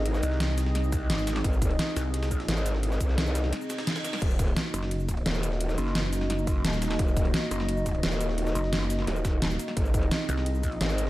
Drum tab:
CC |----------------|----------------|----------------|x---------------|
RD |x-x-x-x-x-x-x-xx|x-xxx-x-xx-xx-x-|x-x-x-x-x-xxxxxx|x-xxx-x-x-xxx-x-|
HH |x-x-x-x-x-x-x-x-|x-x-x-x-x-x-x-x-|x-x-x-x-x-x-x-x-|x-x-x-x-x-x-x-x-|
SH |-xx---x--xx--xx-|-xx---x--xx--xx-|-xx--xx--xx--xx-|-xx---x--xx--xx-|
SD |-o-oo-ooo---oooo|----o-o-oo-oo-oo|-o-oo-ooo-oooooo|----o--o----oo-o|
BD |----------o-----|o-o-------o-----|--o-------------|o-o-------o-----|

CC |----------------|----------------|----------------|----------------|
RD |x-x-x-x-x-x-x-xx|x-xxx-x-x-xxx-x-|x-x-x-x-x-x-x-xx|x-xxx-x-x-xxx-x-|
HH |x-x-x-x-x-x-x-x-|x-x-x-x-x-x-x-x-|x-x-x-x-x-x-x-x-|x-x-x-x-x-x-x-x-|
SH |-xx---x--xx--xx-|-xx---x--xx--xx-|-xx---x--xx--xx-|-xx---x--xx--xx-|
SD |-o-oo-ooo---oooo|----o--o----oo-o|-o-oo-ooo-o-oo-o|----o--o----oo-o|
BD |----------o-----|o-o-------o-----|----------o-----|o-o-------o-----|